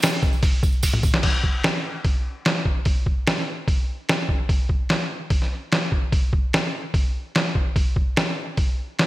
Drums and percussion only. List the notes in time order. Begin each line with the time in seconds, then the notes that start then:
0.02 snare, open hi-hat, tambourine
0.23 kick, tambourine
0.33 tambourine
0.43 kick, open hi-hat, tambourine
0.63 kick, tambourine
0.73 tambourine
0.83 kick, open hi-hat, tambourine
0.93 mid tom, tambourine
1.03 kick, tambourine
1.14 snare
1.23 kick, open hi-hat, crash
1.44 kick
1.64 snare, open hi-hat
2.05 kick, open hi-hat
2.45 snare, open hi-hat
2.65 kick
2.85 kick, open hi-hat
3.06 kick
3.27 snare, open hi-hat
3.38 snare
3.68 kick, open hi-hat
4.09 snare, open hi-hat
4.29 kick
4.49 kick, open hi-hat
4.69 kick
4.89 snare, open hi-hat
5.30 kick, open hi-hat
5.42 snare
5.72 snare, open hi-hat
5.92 kick
6.12 kick, open hi-hat
6.33 kick
6.53 snare, open hi-hat
6.94 kick, open hi-hat
7.35 snare, open hi-hat
7.55 kick
7.76 kick, open hi-hat
7.96 kick
8.16 snare, open hi-hat
8.57 kick, open hi-hat
8.99 snare, open hi-hat